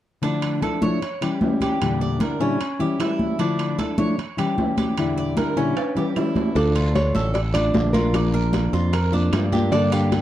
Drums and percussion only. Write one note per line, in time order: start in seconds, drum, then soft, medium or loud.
0.23 high conga soft
0.23 high timbale medium
0.42 high conga soft
0.42 high timbale medium
0.42 claves medium
0.62 high conga medium
0.62 high timbale medium
0.62 low timbale medium
0.82 high conga medium
1.02 high conga soft
1.02 high timbale medium
1.22 high conga soft
1.22 high timbale medium
1.22 claves medium
1.41 high conga medium
1.41 low timbale medium
1.61 high conga medium
1.61 high timbale medium
1.81 high conga soft
1.81 high timbale medium
1.81 claves medium
2.01 high conga soft
2.20 high conga medium
2.20 high timbale medium
2.20 low timbale medium
2.40 high conga soft
2.60 high conga soft
2.60 high timbale medium
2.60 claves medium
2.80 high conga soft
3.00 high conga soft
3.00 high timbale medium
3.00 low timbale medium
3.00 claves medium
3.19 high conga medium
3.40 high conga soft
3.40 high timbale medium
3.59 high conga soft
3.59 high timbale medium
3.59 claves medium
3.78 high conga medium
3.78 high timbale medium
3.78 low timbale medium
3.98 high conga loud
4.18 high conga soft
4.18 high timbale medium
4.38 high conga soft
4.38 high timbale medium
4.38 claves medium
4.58 high conga medium
4.58 low timbale medium
4.77 high conga medium
4.77 high timbale medium
4.97 high conga soft
4.97 high timbale medium
4.97 claves medium
5.17 high conga soft
5.37 high conga medium
5.37 high timbale medium
5.37 low timbale medium
5.57 high conga soft
5.77 high conga soft
5.77 high timbale medium
5.77 claves medium
5.96 high conga soft
5.96 high timbale medium
6.16 high conga soft
6.16 low timbale medium
6.16 claves medium
6.36 high conga medium
6.36 low timbale medium
6.55 high bongo medium
6.55 high conga soft
6.55 high timbale medium
6.55 long guiro medium
6.75 high bongo soft
6.75 high conga soft
6.75 high timbale medium
6.75 claves medium
6.95 high bongo medium
6.95 high conga medium
6.95 high timbale medium
6.95 low timbale medium
6.95 short guiro medium
7.15 high bongo soft
7.15 high conga medium
7.15 short guiro medium
7.35 high bongo medium
7.35 high conga soft
7.35 high timbale medium
7.35 long guiro medium
7.54 high bongo soft
7.54 high conga soft
7.54 high timbale medium
7.54 claves medium
7.74 high bongo medium
7.74 low bongo medium
7.74 high conga medium
7.74 low timbale medium
7.74 short guiro medium
7.94 high conga medium
7.94 high timbale medium
7.94 short guiro medium
8.14 high bongo medium
8.14 high conga soft
8.14 high timbale medium
8.14 long guiro medium
8.14 claves medium
8.33 high bongo soft
8.33 high conga soft
8.53 high bongo medium
8.53 high conga medium
8.53 high timbale medium
8.53 low timbale medium
8.53 short guiro medium
8.73 high bongo soft
8.73 high conga soft
8.73 short guiro medium
8.93 high bongo medium
8.93 high conga soft
8.93 high timbale medium
8.93 long guiro medium
8.93 claves medium
9.13 high conga soft
9.33 high bongo medium
9.33 low bongo medium
9.33 high conga soft
9.33 high timbale medium
9.33 low timbale medium
9.33 short guiro medium
9.33 claves medium
9.52 high bongo soft
9.52 high conga medium
9.52 short guiro medium
9.72 high bongo medium
9.72 high conga soft
9.72 high timbale medium
9.72 long guiro medium
9.92 high bongo soft
9.92 high conga soft
9.92 high timbale medium
9.92 claves medium
10.12 high bongo medium
10.12 high conga medium
10.12 high timbale medium
10.12 low timbale medium
10.12 short guiro medium